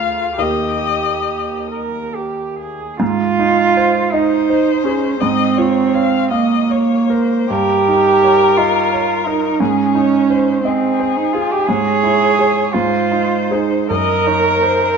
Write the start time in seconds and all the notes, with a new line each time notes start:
Already playing: D2 F4 G#4 B4 F5
0.38 D#2 D#4 G4 A#4 D#5
1.71 A#4
2.15 G4
2.60 G#4
3.00 G#2 F4
3.39 D#4
3.77 C5
4.13 D#4 C5 D#5
4.50 C5
4.84 C#4 G#4
5.20 G#2 C4 D#5
5.57 F4 C#5
5.94 C#5 F5
6.31 A#3 D#5 F5
6.70 C#5
7.10 A#4 C5
7.50 G2 G4 A#4
7.88 D#4
8.24 C#5
8.57 F4 D#5
8.93 C#5
9.26 D#4 A#4
9.59 G#2 C#4 G#4
9.95 D#4 C#5
10.30 C5
10.64 C4 G#4 D#5
11.00 C5
11.17 D#4
11.33 F4 G#4
11.51 G4
11.67 G#2 G#4 C#5
12.03 E4
12.39 G#4 C#5
12.73 G#2 F4 C5
13.12 D#4
13.51 D#4 G#4 C5
13.90 F#2 A#4 D#5
14.27 D#4 C#5
14.62 C5